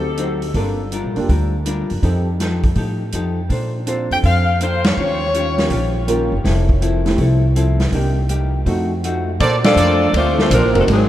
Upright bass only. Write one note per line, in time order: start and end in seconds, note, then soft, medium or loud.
0.00 0.51 D2 medium
0.54 1.00 G1 medium
1.04 1.16 A#1 medium
1.17 1.28 F1 medium
1.29 1.86 D2 medium
1.91 2.02 F#2 medium
2.03 2.73 F2 medium
2.76 3.10 A2 medium
3.13 3.48 F2 medium
3.50 4.07 A#2 medium
4.11 4.23 F2 medium
4.23 4.94 F2 medium
4.97 5.68 D#2 medium
5.70 6.28 A#1 medium
6.32 6.44 F#1 medium
6.44 7.15 F1 medium
7.18 7.89 C2 medium
7.92 8.63 C2 medium
8.66 9.37 F2 medium
9.40 9.75 A#2 medium
9.76 10.13 F2 medium
10.13 10.50 D2 medium
10.50 10.61 A#1 medium
10.61 10.74 A1 medium
10.75 10.87 F1 medium
10.88 11.09 G#1 medium